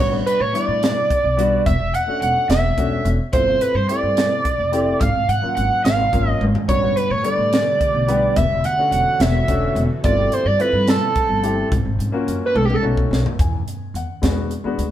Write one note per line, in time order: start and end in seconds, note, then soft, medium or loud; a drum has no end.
0.00 0.20 A1 medium
0.00 0.12 C#5 medium
0.11 0.38 G3 medium
0.11 0.38 B3 soft
0.11 0.39 D4 medium
0.11 0.39 F#4 medium
0.26 0.42 B4 medium
0.26 0.40 B4 medium
0.26 closed hi-hat medium
0.40 0.51 A2 medium
0.40 0.54 C#5 medium
0.53 1.06 G3 medium
0.53 1.07 B3 medium
0.53 1.07 D4 medium
0.53 1.07 E4 medium
0.53 1.62 D5 loud
0.53 1.62 D5 medium
0.53 closed hi-hat medium
0.68 0.90 A2 medium
0.83 snare loud
0.83 closed hi-hat medium
1.10 kick medium
1.10 closed hi-hat medium
1.24 1.57 B1 medium
1.37 1.65 G3 medium
1.37 1.66 B3 medium
1.37 1.66 D4 medium
1.37 1.66 F#4 loud
1.37 closed hi-hat medium
1.66 1.77 E1 loud
1.66 1.96 E5 loud
1.66 1.94 E5 medium
1.66 kick loud
1.66 closed hi-hat medium
1.80 1.91 E1 medium
1.93 2.04 E2 medium
1.93 2.20 F#5 medium
1.93 2.22 F#5 loud
1.93 closed hi-hat medium
2.07 2.51 A3 medium
2.07 2.52 C#4 medium
2.07 2.52 D4 medium
2.07 2.52 F#4 medium
2.07 muted upright bass stroke soft
2.21 2.33 E1 medium
2.21 2.47 F#5 medium
2.21 2.48 F#5 loud
2.21 closed hi-hat medium
2.49 2.71 E1 loud
2.49 3.08 E5 medium
2.49 3.09 E5 loud
2.49 snare loud
2.49 closed hi-hat medium
2.77 2.99 E1 medium
2.77 3.13 A3 medium
2.77 3.13 C#4 medium
2.77 3.13 D4 medium
2.77 3.14 F#4 medium
2.77 kick medium
2.77 closed hi-hat medium
3.05 3.16 E1 loud
3.05 closed hi-hat medium
3.32 3.55 G1 medium
3.32 3.42 A3 medium
3.32 3.42 C4 medium
3.32 3.42 E4 medium
3.32 3.43 F4 medium
3.32 3.61 C5 medium
3.32 3.63 C5 loud
3.32 kick loud
3.32 closed hi-hat medium
3.46 3.73 A3 medium
3.46 3.74 C4 medium
3.46 3.74 E4 medium
3.46 3.74 F4 medium
3.61 3.75 B4 medium
3.61 3.77 B4 medium
3.61 closed hi-hat medium
3.74 3.86 G2 medium
3.74 3.88 C5 medium
3.89 4.42 A3 medium
3.89 4.42 C4 medium
3.89 4.43 E4 medium
3.89 4.43 G4 medium
3.89 4.97 D5 medium
3.89 5.02 D5 loud
3.89 closed hi-hat medium
4.03 4.25 G2 medium
4.17 snare loud
4.17 closed hi-hat medium
4.45 kick medium
4.45 closed hi-hat medium
4.58 4.92 F1 medium
4.72 5.00 A3 medium
4.72 5.01 C4 medium
4.72 5.01 E4 medium
4.72 5.01 G4 medium
4.72 closed hi-hat medium
5.00 5.12 G#1 loud
5.00 5.30 F5 loud
5.00 5.29 F5 medium
5.00 kick loud
5.00 closed hi-hat medium
5.15 5.26 G#1 medium
5.28 5.40 G#2 medium
5.28 5.56 F#5 loud
5.28 5.54 F#5 medium
5.28 closed hi-hat medium
5.42 5.87 F#3 medium
5.42 5.87 A#3 medium
5.42 5.87 C#4 soft
5.42 5.87 F4 medium
5.42 muted upright bass stroke soft
5.55 5.68 G#1 medium
5.55 5.82 F#5 medium
5.55 5.83 F#5 loud
5.55 closed hi-hat medium
5.84 6.07 G#1 loud
5.84 6.29 F5 medium
5.84 6.30 F5 loud
5.84 snare loud
5.84 closed hi-hat medium
6.12 6.35 G#1 medium
6.12 6.48 F#3 medium
6.12 6.48 A#3 medium
6.12 6.48 C#4 medium
6.12 6.49 F4 medium
6.12 kick medium
6.12 closed hi-hat medium
6.29 6.43 D#5 medium
6.29 6.43 D#5 loud
6.41 6.52 G#1 medium
6.41 high tom medium
6.55 floor tom medium
6.68 6.91 A1 medium
6.68 10.01 D3 medium
6.68 6.77 G3 medium
6.68 8.35 A3 medium
6.68 6.77 B3 medium
6.68 6.78 D4 medium
6.68 6.78 F#4 medium
6.68 8.35 G4 medium
6.68 6.96 C#5 medium
6.68 6.98 C#5 loud
6.68 kick medium
6.68 closed hi-hat medium
6.81 7.09 G3 medium
6.81 7.09 B3 medium
6.81 7.09 D4 medium
6.81 7.10 F#4 medium
6.96 7.11 B4 medium
6.96 7.12 B4 medium
6.96 closed hi-hat medium
7.10 7.21 A2 medium
7.10 7.24 C#5 medium
7.10 7.23 C#5 medium
7.23 7.77 G3 medium
7.23 7.77 B3 medium
7.23 7.78 D4 medium
7.23 7.78 A4 medium
7.23 8.38 D5 loud
7.23 8.32 D5 medium
7.23 closed hi-hat medium
7.38 7.60 A2 medium
7.53 snare loud
7.53 closed hi-hat medium
7.81 kick medium
7.81 closed hi-hat medium
7.94 8.27 B1 medium
8.08 8.36 G3 medium
8.08 8.36 B3 medium
8.08 8.37 D4 medium
8.08 8.37 G4 medium
8.08 closed hi-hat medium
8.36 8.47 E1 loud
8.36 10.02 E3 medium
8.36 10.02 B3 medium
8.36 10.02 F#4 medium
8.36 10.02 A4 medium
8.36 10.02 C#5 medium
8.36 8.66 E5 medium
8.36 8.65 E5 medium
8.36 kick loud
8.36 closed hi-hat medium
8.50 8.61 E1 medium
8.64 8.75 E2 medium
8.64 8.91 F#5 medium
8.64 8.92 F#5 medium
8.64 closed hi-hat medium
8.78 9.22 A3 medium
8.78 9.22 C#4 medium
8.78 9.23 D4 medium
8.78 9.23 F#4 medium
8.78 muted upright bass stroke soft
8.91 9.03 E1 medium
8.91 9.21 F#5 medium
8.91 9.23 F#5 medium
8.91 closed hi-hat medium
9.20 9.42 E1 loud
9.20 9.83 E5 medium
9.20 snare loud
9.20 closed hi-hat medium
9.48 9.70 E1 medium
9.48 9.83 A3 medium
9.48 9.83 C#4 medium
9.48 9.84 D4 medium
9.48 9.84 F#4 medium
9.48 kick medium
9.48 closed hi-hat medium
9.75 9.86 E1 loud
9.75 closed hi-hat medium
10.03 10.26 G1 loud
10.03 11.70 F3 medium
10.03 11.70 G3 medium
10.03 10.12 A3 medium
10.03 10.13 C4 medium
10.03 11.70 C4 medium
10.03 10.13 E4 medium
10.03 10.13 F4 medium
10.03 10.35 D5 loud
10.03 10.33 D5 medium
10.03 kick loud
10.03 closed hi-hat medium
10.18 10.44 A3 medium
10.18 10.45 C4 medium
10.18 10.45 E4 medium
10.18 10.45 G4 medium
10.32 10.48 C5 medium
10.32 10.46 C5 medium
10.32 closed hi-hat medium
10.45 10.56 G2 medium
10.45 10.61 D5 medium
10.59 11.12 A3 medium
10.59 11.13 C4 medium
10.59 11.13 E4 medium
10.59 11.13 F4 medium
10.59 10.88 B4 medium
10.59 closed hi-hat medium
10.73 10.95 G2 medium
10.87 11.68 A4 medium
10.87 snare loud
10.87 closed hi-hat medium
11.15 kick medium
11.15 closed hi-hat medium
11.29 11.62 G1 medium
11.42 11.71 A3 medium
11.42 11.71 C4 medium
11.42 11.71 E4 medium
11.42 11.72 G4 medium
11.42 closed hi-hat medium
11.72 11.83 G#1 loud
11.72 kick loud
11.72 closed hi-hat medium
11.85 11.96 G#1 medium
11.99 12.10 G#2 medium
11.99 closed hi-hat medium
12.12 12.55 A#3 medium
12.12 12.55 C#4 medium
12.12 12.55 F4 medium
12.12 12.56 F#4 medium
12.12 muted upright bass stroke soft
12.27 12.38 F#2 medium
12.27 closed hi-hat medium
12.46 12.58 B4 medium
12.46 12.55 B4 medium
12.55 12.77 B1 medium
12.55 12.65 A4 soft
12.55 12.67 A4 medium
12.55 high tom medium
12.65 12.75 G4 medium
12.65 12.75 G4 soft
12.70 12.83 A4 medium
12.70 high tom medium
12.75 12.84 A4 soft
12.82 13.05 B1 medium
12.82 13.18 A3 medium
12.82 13.18 C#4 medium
12.82 13.19 D#4 medium
12.82 13.19 F#4 medium
12.97 kick medium
13.11 13.22 B1 loud
13.11 snare medium
13.26 floor tom medium
13.39 13.61 E2 loud
13.39 13.92 G#5 medium
13.39 kick loud
13.39 closed hi-hat medium
13.68 closed hi-hat medium
13.94 14.05 E2 medium
13.94 14.23 F#5 medium
13.94 closed hi-hat medium
14.22 14.56 E2 medium
14.22 14.49 G#3 medium
14.22 14.49 B3 medium
14.22 14.49 D4 medium
14.22 14.50 F#4 medium
14.22 kick medium
14.22 snare loud
14.22 closed hi-hat medium
14.51 closed hi-hat medium
14.64 14.75 E2 medium
14.64 14.82 G#3 medium
14.64 14.83 B3 medium
14.64 14.83 D4 medium
14.64 14.83 F#4 medium
14.78 14.89 D2 medium
14.78 closed hi-hat medium